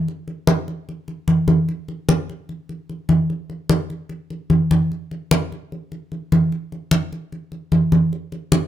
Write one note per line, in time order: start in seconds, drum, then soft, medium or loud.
0.08 high conga soft
0.28 high conga soft
0.47 high conga medium
0.68 high conga soft
0.89 high conga soft
1.08 high conga soft
1.28 high conga medium
1.48 high conga medium
1.69 high conga soft
1.88 high conga soft
2.09 high conga medium
2.30 high conga soft
2.49 high conga soft
2.69 high conga soft
2.89 high conga soft
3.09 high conga medium
3.30 high conga soft
3.50 high conga soft
3.69 high conga medium
3.90 high conga soft
4.09 high conga soft
4.30 high conga soft
4.50 high conga medium
4.71 high conga medium
4.92 high conga soft
5.11 high conga soft
5.31 high conga medium
5.52 high conga soft
5.72 high conga soft
5.92 high conga soft
6.12 high conga soft
6.32 high conga medium
6.52 high conga soft
6.72 high conga soft
6.91 high conga medium
7.12 high conga soft
7.32 high conga soft
7.52 high conga soft
7.72 high conga medium
7.92 high conga medium
8.13 high conga soft
8.32 high conga soft
8.52 high conga medium